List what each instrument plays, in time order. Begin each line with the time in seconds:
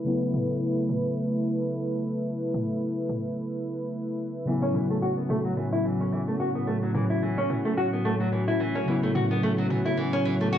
Already playing: analog synth pad A3 E4 B4, singing bowl A3 A4
0.04 synth keys C#3 F#3 B3
0.08 synth keys E4
0.34 mid tom
0.89 mid tom
2.54 mid tom
3.09 mid tom
4.45 analog synth pad A2 F#3 C#4 F#4, synth keys C#3 F#3 B3, nylon-string guitar E3
4.49 synth keys E4
4.62 nylon-string guitar C#4
4.74 nylon-string guitar E3, mid tom
4.90 nylon-string guitar A3
5.02 nylon-string guitar F#4
5.17 nylon-string guitar B3
5.29 nylon-string guitar A3, mid tom
5.45 nylon-string guitar F#3
5.57 nylon-string guitar E3
5.73 nylon-string guitar E4
5.85 nylon-string guitar E3
6.00 nylon-string guitar C#4
6.12 nylon-string guitar E3
6.28 nylon-string guitar A3
6.40 nylon-string guitar F#4
6.55 nylon-string guitar B3
6.67 nylon-string guitar A3
6.83 nylon-string guitar F#3
6.95 nylon-string guitar E3, mid tom
7.10 nylon-string guitar E4
7.22 nylon-string guitar E3
7.38 nylon-string guitar C#4
7.50 nylon-string guitar E3, mid tom
7.65 nylon-string guitar A3
7.77 nylon-string guitar F#4
7.93 nylon-string guitar B3
8.05 nylon-string guitar A3
8.20 nylon-string guitar F#3
8.32 nylon-string guitar E3
8.48 nylon-string guitar E4
8.60 nylon-string guitar E3
8.75 nylon-string guitar C#4
8.86 synth keys C#3 F#3 B3, nylon-string guitar E3
8.90 synth keys E4
9.03 nylon-string guitar A3
9.15 nylon-string guitar F#4, mid tom
9.31 nylon-string guitar B3
9.43 nylon-string guitar A3
9.58 nylon-string guitar F#3
9.70 nylon-string guitar E3, mid tom
9.86 nylon-string guitar E4
9.97 nylon-string guitar E3
10.13 nylon-string guitar C#4
10.25 nylon-string guitar E3
10.41 nylon-string guitar A3
10.53 nylon-string guitar F#4